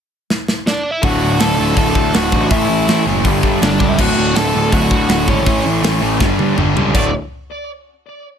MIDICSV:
0, 0, Header, 1, 5, 480
1, 0, Start_track
1, 0, Key_signature, 2, "major"
1, 0, Tempo, 370142
1, 1336, Time_signature, 4, 2, 24, 8
1, 10878, End_track
2, 0, Start_track
2, 0, Title_t, "Lead electric guitar"
2, 0, Program_c, 0, 29
2, 865, Note_on_c, 0, 62, 65
2, 870, Note_on_c, 0, 74, 92
2, 1158, Note_off_c, 0, 62, 0
2, 1161, Note_off_c, 0, 74, 0
2, 1177, Note_on_c, 0, 76, 95
2, 1194, Note_on_c, 0, 64, 70
2, 1334, Note_off_c, 0, 64, 0
2, 1341, Note_off_c, 0, 76, 0
2, 1350, Note_on_c, 0, 66, 70
2, 1355, Note_on_c, 0, 78, 87
2, 1790, Note_off_c, 0, 66, 0
2, 1824, Note_on_c, 0, 81, 98
2, 1831, Note_on_c, 0, 69, 82
2, 1835, Note_off_c, 0, 78, 0
2, 2269, Note_off_c, 0, 69, 0
2, 2295, Note_off_c, 0, 81, 0
2, 2310, Note_on_c, 0, 81, 103
2, 2325, Note_on_c, 0, 69, 78
2, 2756, Note_off_c, 0, 69, 0
2, 2795, Note_off_c, 0, 81, 0
2, 2797, Note_on_c, 0, 78, 85
2, 2798, Note_on_c, 0, 66, 80
2, 3232, Note_off_c, 0, 66, 0
2, 3256, Note_off_c, 0, 78, 0
2, 3261, Note_on_c, 0, 76, 77
2, 3267, Note_on_c, 0, 64, 59
2, 3924, Note_off_c, 0, 76, 0
2, 3927, Note_off_c, 0, 64, 0
2, 4702, Note_on_c, 0, 74, 88
2, 4713, Note_on_c, 0, 62, 71
2, 4998, Note_off_c, 0, 62, 0
2, 5024, Note_off_c, 0, 74, 0
2, 5038, Note_on_c, 0, 76, 102
2, 5045, Note_on_c, 0, 64, 70
2, 5176, Note_off_c, 0, 64, 0
2, 5188, Note_off_c, 0, 76, 0
2, 5188, Note_on_c, 0, 78, 86
2, 5197, Note_on_c, 0, 66, 82
2, 5629, Note_off_c, 0, 66, 0
2, 5656, Note_on_c, 0, 81, 101
2, 5657, Note_off_c, 0, 78, 0
2, 5662, Note_on_c, 0, 69, 87
2, 6098, Note_off_c, 0, 81, 0
2, 6101, Note_off_c, 0, 69, 0
2, 6135, Note_on_c, 0, 66, 76
2, 6145, Note_on_c, 0, 78, 82
2, 6578, Note_off_c, 0, 66, 0
2, 6601, Note_off_c, 0, 78, 0
2, 6617, Note_on_c, 0, 78, 103
2, 6623, Note_on_c, 0, 66, 68
2, 6835, Note_off_c, 0, 78, 0
2, 6838, Note_off_c, 0, 66, 0
2, 6859, Note_on_c, 0, 61, 67
2, 6863, Note_on_c, 0, 73, 82
2, 7299, Note_off_c, 0, 73, 0
2, 7302, Note_off_c, 0, 61, 0
2, 9010, Note_on_c, 0, 74, 76
2, 9235, Note_off_c, 0, 74, 0
2, 10878, End_track
3, 0, Start_track
3, 0, Title_t, "Distorted electric guitar"
3, 0, Program_c, 1, 30
3, 1335, Note_on_c, 1, 38, 104
3, 1343, Note_on_c, 1, 45, 110
3, 1357, Note_on_c, 1, 50, 110
3, 1806, Note_off_c, 1, 38, 0
3, 1813, Note_off_c, 1, 45, 0
3, 1819, Note_off_c, 1, 50, 0
3, 1821, Note_on_c, 1, 38, 92
3, 1829, Note_on_c, 1, 45, 92
3, 1835, Note_on_c, 1, 50, 99
3, 2032, Note_off_c, 1, 38, 0
3, 2038, Note_off_c, 1, 45, 0
3, 2048, Note_on_c, 1, 38, 88
3, 2053, Note_off_c, 1, 50, 0
3, 2053, Note_on_c, 1, 45, 94
3, 2068, Note_on_c, 1, 50, 88
3, 2268, Note_off_c, 1, 38, 0
3, 2276, Note_off_c, 1, 45, 0
3, 2284, Note_on_c, 1, 38, 97
3, 2288, Note_off_c, 1, 50, 0
3, 2292, Note_on_c, 1, 45, 104
3, 2304, Note_on_c, 1, 50, 102
3, 2745, Note_off_c, 1, 38, 0
3, 2758, Note_off_c, 1, 45, 0
3, 2758, Note_off_c, 1, 50, 0
3, 2760, Note_on_c, 1, 38, 82
3, 2773, Note_on_c, 1, 45, 88
3, 2773, Note_on_c, 1, 50, 98
3, 2987, Note_off_c, 1, 38, 0
3, 2999, Note_off_c, 1, 45, 0
3, 3002, Note_on_c, 1, 38, 94
3, 3005, Note_off_c, 1, 50, 0
3, 3014, Note_on_c, 1, 45, 88
3, 3020, Note_on_c, 1, 50, 113
3, 3232, Note_off_c, 1, 38, 0
3, 3234, Note_off_c, 1, 45, 0
3, 3241, Note_off_c, 1, 50, 0
3, 3250, Note_on_c, 1, 45, 109
3, 3261, Note_on_c, 1, 52, 101
3, 3265, Note_on_c, 1, 57, 127
3, 3714, Note_off_c, 1, 45, 0
3, 3721, Note_off_c, 1, 52, 0
3, 3728, Note_off_c, 1, 57, 0
3, 3730, Note_on_c, 1, 45, 84
3, 3736, Note_on_c, 1, 52, 99
3, 3744, Note_on_c, 1, 57, 102
3, 3945, Note_off_c, 1, 45, 0
3, 3954, Note_off_c, 1, 52, 0
3, 3960, Note_on_c, 1, 45, 91
3, 3963, Note_off_c, 1, 57, 0
3, 3969, Note_on_c, 1, 52, 89
3, 3978, Note_on_c, 1, 57, 98
3, 4190, Note_off_c, 1, 45, 0
3, 4194, Note_off_c, 1, 52, 0
3, 4199, Note_off_c, 1, 57, 0
3, 4208, Note_on_c, 1, 43, 105
3, 4218, Note_on_c, 1, 50, 94
3, 4224, Note_on_c, 1, 55, 105
3, 4670, Note_off_c, 1, 43, 0
3, 4680, Note_off_c, 1, 50, 0
3, 4685, Note_on_c, 1, 43, 79
3, 4690, Note_off_c, 1, 55, 0
3, 4696, Note_on_c, 1, 50, 85
3, 4706, Note_on_c, 1, 55, 98
3, 4917, Note_off_c, 1, 43, 0
3, 4924, Note_off_c, 1, 50, 0
3, 4932, Note_off_c, 1, 55, 0
3, 4933, Note_on_c, 1, 43, 95
3, 4939, Note_on_c, 1, 50, 92
3, 4948, Note_on_c, 1, 55, 103
3, 5155, Note_off_c, 1, 43, 0
3, 5158, Note_off_c, 1, 50, 0
3, 5162, Note_off_c, 1, 55, 0
3, 5165, Note_on_c, 1, 38, 111
3, 5175, Note_on_c, 1, 45, 111
3, 5180, Note_on_c, 1, 50, 107
3, 5634, Note_off_c, 1, 38, 0
3, 5647, Note_off_c, 1, 45, 0
3, 5649, Note_off_c, 1, 50, 0
3, 5650, Note_on_c, 1, 38, 92
3, 5662, Note_on_c, 1, 45, 100
3, 5665, Note_on_c, 1, 50, 103
3, 5870, Note_off_c, 1, 38, 0
3, 5883, Note_off_c, 1, 45, 0
3, 5885, Note_on_c, 1, 38, 101
3, 5890, Note_off_c, 1, 50, 0
3, 5899, Note_on_c, 1, 45, 96
3, 5905, Note_on_c, 1, 50, 99
3, 6106, Note_off_c, 1, 38, 0
3, 6113, Note_off_c, 1, 45, 0
3, 6122, Note_on_c, 1, 38, 96
3, 6124, Note_off_c, 1, 50, 0
3, 6128, Note_on_c, 1, 45, 100
3, 6139, Note_on_c, 1, 50, 101
3, 6592, Note_off_c, 1, 38, 0
3, 6605, Note_off_c, 1, 45, 0
3, 6607, Note_on_c, 1, 38, 92
3, 6613, Note_off_c, 1, 50, 0
3, 6620, Note_on_c, 1, 45, 86
3, 6629, Note_on_c, 1, 50, 91
3, 6839, Note_off_c, 1, 38, 0
3, 6846, Note_off_c, 1, 45, 0
3, 6854, Note_on_c, 1, 38, 87
3, 6859, Note_off_c, 1, 50, 0
3, 6862, Note_on_c, 1, 45, 94
3, 6875, Note_on_c, 1, 50, 107
3, 7060, Note_off_c, 1, 45, 0
3, 7070, Note_off_c, 1, 38, 0
3, 7075, Note_on_c, 1, 45, 100
3, 7086, Note_off_c, 1, 50, 0
3, 7086, Note_on_c, 1, 52, 101
3, 7096, Note_on_c, 1, 57, 108
3, 7540, Note_off_c, 1, 45, 0
3, 7555, Note_off_c, 1, 52, 0
3, 7556, Note_on_c, 1, 45, 92
3, 7559, Note_off_c, 1, 57, 0
3, 7571, Note_on_c, 1, 52, 98
3, 7575, Note_on_c, 1, 57, 111
3, 7788, Note_off_c, 1, 45, 0
3, 7790, Note_off_c, 1, 52, 0
3, 7801, Note_off_c, 1, 57, 0
3, 7803, Note_on_c, 1, 45, 83
3, 7806, Note_on_c, 1, 52, 88
3, 7817, Note_on_c, 1, 57, 94
3, 8032, Note_off_c, 1, 45, 0
3, 8033, Note_off_c, 1, 52, 0
3, 8038, Note_off_c, 1, 57, 0
3, 8039, Note_on_c, 1, 43, 96
3, 8052, Note_on_c, 1, 50, 91
3, 8060, Note_on_c, 1, 55, 108
3, 8517, Note_off_c, 1, 43, 0
3, 8532, Note_on_c, 1, 43, 87
3, 8535, Note_off_c, 1, 50, 0
3, 8544, Note_off_c, 1, 55, 0
3, 8551, Note_on_c, 1, 50, 98
3, 8560, Note_on_c, 1, 55, 98
3, 8746, Note_off_c, 1, 43, 0
3, 8755, Note_off_c, 1, 50, 0
3, 8762, Note_on_c, 1, 43, 82
3, 8763, Note_off_c, 1, 55, 0
3, 8770, Note_on_c, 1, 50, 97
3, 8779, Note_on_c, 1, 55, 103
3, 8993, Note_off_c, 1, 43, 0
3, 8997, Note_off_c, 1, 50, 0
3, 9001, Note_off_c, 1, 55, 0
3, 9003, Note_on_c, 1, 38, 104
3, 9012, Note_on_c, 1, 45, 95
3, 9020, Note_on_c, 1, 50, 95
3, 9021, Note_on_c, 1, 57, 116
3, 9022, Note_on_c, 1, 66, 114
3, 9200, Note_off_c, 1, 38, 0
3, 9205, Note_off_c, 1, 45, 0
3, 9209, Note_off_c, 1, 50, 0
3, 9209, Note_off_c, 1, 57, 0
3, 9210, Note_off_c, 1, 66, 0
3, 10878, End_track
4, 0, Start_track
4, 0, Title_t, "Picked electric bass"
4, 0, Program_c, 2, 34
4, 1337, Note_on_c, 2, 26, 84
4, 1541, Note_off_c, 2, 26, 0
4, 1582, Note_on_c, 2, 26, 91
4, 1783, Note_off_c, 2, 26, 0
4, 1820, Note_on_c, 2, 26, 84
4, 2022, Note_off_c, 2, 26, 0
4, 2065, Note_on_c, 2, 26, 86
4, 2264, Note_off_c, 2, 26, 0
4, 2292, Note_on_c, 2, 26, 96
4, 2497, Note_off_c, 2, 26, 0
4, 2528, Note_on_c, 2, 38, 95
4, 2734, Note_off_c, 2, 38, 0
4, 2776, Note_on_c, 2, 26, 93
4, 2978, Note_off_c, 2, 26, 0
4, 3017, Note_on_c, 2, 33, 90
4, 3219, Note_off_c, 2, 33, 0
4, 3250, Note_on_c, 2, 33, 93
4, 3455, Note_off_c, 2, 33, 0
4, 3492, Note_on_c, 2, 33, 94
4, 3695, Note_off_c, 2, 33, 0
4, 3736, Note_on_c, 2, 33, 94
4, 3937, Note_off_c, 2, 33, 0
4, 3973, Note_on_c, 2, 30, 96
4, 4175, Note_off_c, 2, 30, 0
4, 4217, Note_on_c, 2, 31, 101
4, 4417, Note_off_c, 2, 31, 0
4, 4454, Note_on_c, 2, 43, 96
4, 4655, Note_off_c, 2, 43, 0
4, 4691, Note_on_c, 2, 31, 95
4, 4893, Note_off_c, 2, 31, 0
4, 4934, Note_on_c, 2, 37, 87
4, 5135, Note_off_c, 2, 37, 0
4, 5174, Note_on_c, 2, 26, 92
4, 5375, Note_off_c, 2, 26, 0
4, 5411, Note_on_c, 2, 26, 97
4, 5613, Note_off_c, 2, 26, 0
4, 5648, Note_on_c, 2, 26, 85
4, 5851, Note_off_c, 2, 26, 0
4, 5890, Note_on_c, 2, 26, 89
4, 6092, Note_off_c, 2, 26, 0
4, 6125, Note_on_c, 2, 26, 103
4, 6330, Note_off_c, 2, 26, 0
4, 6368, Note_on_c, 2, 38, 95
4, 6572, Note_off_c, 2, 38, 0
4, 6604, Note_on_c, 2, 26, 99
4, 6809, Note_off_c, 2, 26, 0
4, 6845, Note_on_c, 2, 32, 81
4, 7089, Note_off_c, 2, 32, 0
4, 7089, Note_on_c, 2, 33, 91
4, 7293, Note_off_c, 2, 33, 0
4, 7325, Note_on_c, 2, 33, 91
4, 7531, Note_off_c, 2, 33, 0
4, 7564, Note_on_c, 2, 33, 86
4, 7771, Note_off_c, 2, 33, 0
4, 7796, Note_on_c, 2, 33, 92
4, 8006, Note_off_c, 2, 33, 0
4, 8046, Note_on_c, 2, 31, 95
4, 8252, Note_off_c, 2, 31, 0
4, 8291, Note_on_c, 2, 43, 88
4, 8495, Note_off_c, 2, 43, 0
4, 8538, Note_on_c, 2, 31, 85
4, 8740, Note_off_c, 2, 31, 0
4, 8778, Note_on_c, 2, 37, 93
4, 8980, Note_off_c, 2, 37, 0
4, 9014, Note_on_c, 2, 26, 91
4, 9237, Note_off_c, 2, 26, 0
4, 10878, End_track
5, 0, Start_track
5, 0, Title_t, "Drums"
5, 394, Note_on_c, 9, 38, 76
5, 523, Note_off_c, 9, 38, 0
5, 628, Note_on_c, 9, 38, 86
5, 758, Note_off_c, 9, 38, 0
5, 872, Note_on_c, 9, 38, 94
5, 1001, Note_off_c, 9, 38, 0
5, 1336, Note_on_c, 9, 36, 125
5, 1336, Note_on_c, 9, 46, 72
5, 1466, Note_off_c, 9, 36, 0
5, 1466, Note_off_c, 9, 46, 0
5, 1811, Note_on_c, 9, 46, 63
5, 1824, Note_on_c, 9, 38, 112
5, 1940, Note_off_c, 9, 46, 0
5, 1953, Note_off_c, 9, 38, 0
5, 2292, Note_on_c, 9, 46, 66
5, 2293, Note_on_c, 9, 36, 101
5, 2422, Note_off_c, 9, 46, 0
5, 2423, Note_off_c, 9, 36, 0
5, 2532, Note_on_c, 9, 36, 90
5, 2662, Note_off_c, 9, 36, 0
5, 2771, Note_on_c, 9, 46, 66
5, 2784, Note_on_c, 9, 38, 115
5, 2901, Note_off_c, 9, 46, 0
5, 2914, Note_off_c, 9, 38, 0
5, 3012, Note_on_c, 9, 36, 92
5, 3142, Note_off_c, 9, 36, 0
5, 3249, Note_on_c, 9, 46, 71
5, 3252, Note_on_c, 9, 36, 126
5, 3378, Note_off_c, 9, 46, 0
5, 3382, Note_off_c, 9, 36, 0
5, 3734, Note_on_c, 9, 46, 54
5, 3747, Note_on_c, 9, 38, 102
5, 3864, Note_off_c, 9, 46, 0
5, 3877, Note_off_c, 9, 38, 0
5, 4211, Note_on_c, 9, 46, 59
5, 4212, Note_on_c, 9, 36, 99
5, 4341, Note_off_c, 9, 46, 0
5, 4342, Note_off_c, 9, 36, 0
5, 4450, Note_on_c, 9, 36, 96
5, 4580, Note_off_c, 9, 36, 0
5, 4694, Note_on_c, 9, 46, 57
5, 4707, Note_on_c, 9, 38, 127
5, 4824, Note_off_c, 9, 46, 0
5, 4837, Note_off_c, 9, 38, 0
5, 4930, Note_on_c, 9, 36, 87
5, 5060, Note_off_c, 9, 36, 0
5, 5170, Note_on_c, 9, 36, 119
5, 5173, Note_on_c, 9, 49, 117
5, 5299, Note_off_c, 9, 36, 0
5, 5303, Note_off_c, 9, 49, 0
5, 5647, Note_on_c, 9, 46, 59
5, 5660, Note_on_c, 9, 38, 109
5, 5777, Note_off_c, 9, 46, 0
5, 5790, Note_off_c, 9, 38, 0
5, 6125, Note_on_c, 9, 46, 60
5, 6127, Note_on_c, 9, 36, 99
5, 6255, Note_off_c, 9, 46, 0
5, 6257, Note_off_c, 9, 36, 0
5, 6366, Note_on_c, 9, 36, 94
5, 6496, Note_off_c, 9, 36, 0
5, 6598, Note_on_c, 9, 46, 71
5, 6611, Note_on_c, 9, 38, 116
5, 6728, Note_off_c, 9, 46, 0
5, 6741, Note_off_c, 9, 38, 0
5, 6845, Note_on_c, 9, 36, 96
5, 6975, Note_off_c, 9, 36, 0
5, 7087, Note_on_c, 9, 36, 117
5, 7087, Note_on_c, 9, 46, 71
5, 7216, Note_off_c, 9, 36, 0
5, 7217, Note_off_c, 9, 46, 0
5, 7567, Note_on_c, 9, 46, 58
5, 7580, Note_on_c, 9, 38, 112
5, 7697, Note_off_c, 9, 46, 0
5, 7710, Note_off_c, 9, 38, 0
5, 8046, Note_on_c, 9, 36, 115
5, 8054, Note_on_c, 9, 38, 65
5, 8176, Note_off_c, 9, 36, 0
5, 8184, Note_off_c, 9, 38, 0
5, 8287, Note_on_c, 9, 48, 69
5, 8417, Note_off_c, 9, 48, 0
5, 8530, Note_on_c, 9, 45, 90
5, 8660, Note_off_c, 9, 45, 0
5, 8776, Note_on_c, 9, 43, 84
5, 8906, Note_off_c, 9, 43, 0
5, 9009, Note_on_c, 9, 36, 114
5, 9014, Note_on_c, 9, 57, 97
5, 9139, Note_off_c, 9, 36, 0
5, 9144, Note_off_c, 9, 57, 0
5, 10878, End_track
0, 0, End_of_file